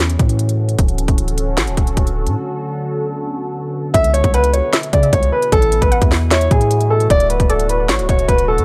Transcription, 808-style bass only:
Already playing: E2
0.19 A2
0.79 D1
1.08 D1
1.58 A1
1.67 D1
1.77 D1
1.97 D1
2.27 A2
3.94 C#2
4.24 C#2
4.93 C#3
5.13 C#2
5.52 A1
5.82 A1
6.02 E2
6.51 A2
7.10 D1
7.40 D1
7.89 A1
7.99 D1
8.09 D1
8.29 D1
8.58 A2

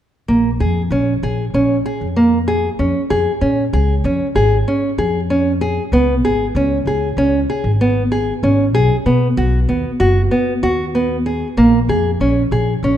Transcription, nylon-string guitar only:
0.28 A#3
0.60 G#4
0.92 C#4
1.23 G#4
1.54 C#4
1.86 G#4
2.16 A#3
2.48 G#4
2.79 C#4
3.10 G#4
3.41 C#4
3.73 G#4
4.05 C#4
4.36 G#4
4.68 C#4
4.98 G#4
5.30 C#4
5.61 G#4
5.93 B3
6.25 G#4
6.56 C#4
6.87 G#4
7.18 C#4
7.50 G#4
7.81 B3
8.12 G#4
8.43 C#4
8.75 G#4
9.06 B3
9.37 F#4
9.69 B3
10.00 F#4
10.31 B3
10.63 F#4
10.95 B3
11.26 G#4
11.57 A#3
11.89 G#4
12.21 C#4
12.52 G#4
12.84 C#4

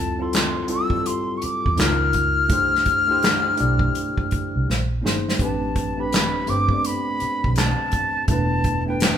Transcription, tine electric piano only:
Already playing: G3 C4 E4 F4 A4
0.18 G3 C4 E4 F4
0.22 A4
0.66 G3 C4 E4 F4 A4
0.90 G3 C4 E4 F4
0.94 G4
1.00 A4
1.76 G#3 C#4 D#4 F4
1.80 A#4
2.48 A3 D4 E4 G4
2.53 C5
3.07 A3 D4 E4 G4
3.12 C5
3.57 A3 D4 E4 G4
3.61 D5
5.02 A#3 C#4 D#4 G#4
5.06 C5
5.38 A3 C4 D4 G4
5.42 B4
5.97 A3 C4 D4 G4 B4
6.47 A3 C4 D4 G4 C5
6.70 A3 B3 D4 G4 D5
6.77 C4
8.28 A3 B3 D4 E4
8.32 B4
8.86 A3 B3 D4 E4
8.90 B4

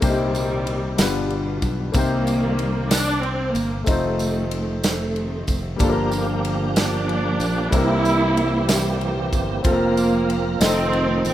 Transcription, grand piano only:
0.01 C3 A#3 C4 D4 G4 C5
0.09 D#4
0.97 G2 G3 B3 D4 F4 B4
1.92 C3 D#3 A#3 C4
1.97 G4 C5
3.84 A3 C4 D#4
3.89 F4 C5
5.76 G2 G3 A#3 D4
5.81 F4 A4
5.90 A#4
7.70 C3 G3 A#3 C4
7.74 D4 A#4
7.81 E4
9.63 C4 F4 A4
9.72 A#4
10.59 C4 D#4 F4 A4 D#5

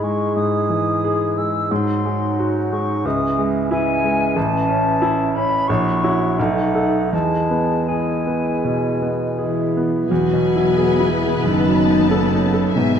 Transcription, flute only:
0.03 C#6
0.36 D#6
1.37 E6
1.72 C6
2.71 C#6
3.06 D#6
3.71 G#5
4.37 A5
5.35 B5
5.68 C#6
6.39 F#5
7.13 A5
7.87 G#5

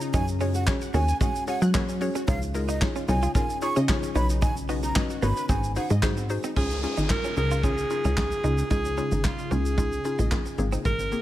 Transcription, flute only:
0.14 G#5
0.54 F#5
0.94 G#5
1.21 G#5
1.48 F#5
2.28 F5
2.69 D#5
3.09 G#5
3.35 G#5
3.62 C#6
4.16 B5
4.42 G#5
4.84 A#5
5.23 B5
5.49 G#5
5.76 F#5

